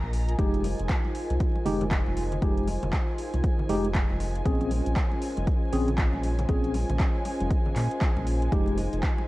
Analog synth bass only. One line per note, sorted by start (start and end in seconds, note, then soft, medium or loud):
0.03 0.35 A#1 medium
0.39 0.74 F1 loud
0.79 0.87 F1 loud
1.30 1.38 C2 loud
1.66 2.01 F1 loud
2.07 2.39 F1 medium
2.42 2.78 F1 loud
2.83 2.91 F1 loud
3.34 3.42 C2 medium
3.69 4.05 F1 loud
4.10 4.42 F1 medium
4.45 4.81 A#1 loud
4.86 4.94 A#1 loud
5.37 5.45 F1 loud
5.73 6.08 A#1 loud
6.13 6.45 A#1 medium
6.49 6.84 A#1 loud
6.90 6.98 A#1 loud
7.40 7.48 F1 loud
7.76 7.88 A#2 loud
8.17 8.49 A#1 medium
8.52 8.88 F1 loud
8.93 9.01 F1 loud